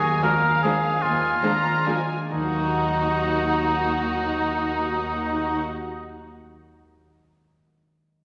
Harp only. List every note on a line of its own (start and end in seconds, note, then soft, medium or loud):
0.00 1.01 D#3 soft
0.00 0.42 A#3 soft
0.23 0.83 D4 soft
0.43 1.21 A#3 soft
0.64 1.87 G#3 soft
0.84 1.43 D4 soft
1.02 2.31 D#3 soft
1.22 1.64 A#3 soft
1.44 2.09 D4 soft
1.65 2.45 A#3 soft
1.88 2.33 G#3 soft
2.10 2.33 D4 soft
2.32 6.22 D#3 soft
2.39 6.08 F#3 soft
2.46 6.04 A#3 soft
2.53 6.10 D#4 soft
2.60 6.17 A#4 soft